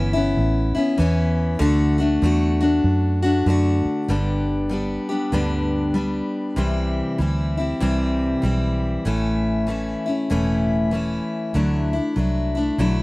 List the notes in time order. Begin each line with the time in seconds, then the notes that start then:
Already playing: G1 E3 B3 C#4 E4
0.13 B3 C#4 E4
0.37 A1
0.75 B3 C#4 E4
0.98 E2 E3 B3 C#4 E4
1.59 D2 D3 A3 D4 F#4
1.98 A3 D4 F#4
2.22 E2 D3 A3 D4 F#4
2.61 A3 D4 F#4
2.84 F#2
3.22 A3 D4 F#4
3.46 F#2 D3 A3 D4 F#4
3.85 muted fingered electric bass stroke
4.08 G1 G2 D3 G3 B3 D4 G4
4.69 G3 B3 D4 G4
5.09 G3 B3 D4 G4
5.32 D2 G2 D3 G3 B3 D4 G4
5.94 G3 B3 D4 G4
6.56 C2 C3 E3 G3 C4 E4
7.18 D2 E3 G3 C4 E4
7.57 G3 C4 E4
7.80 C2 C3 E3 G3 C4 E4
8.42 B1 E3 G3 C4 E4
9.05 A1 A2 E3 A3 C#4 E4
9.67 E3 A3 C#4 E4
10.06 A3 C#4 E4
10.30 E1 A2 E3 A3 C#4 E4
10.91 E3 A3 C#4 E4
11.54 D2 D3 F#3 A3 D4 E4
11.93 A3 D4 E4
12.16 C2 F#3 A3 D4 E4
12.55 A3 D4 E4
12.78 B1 D3 F#3 A3 D4 E4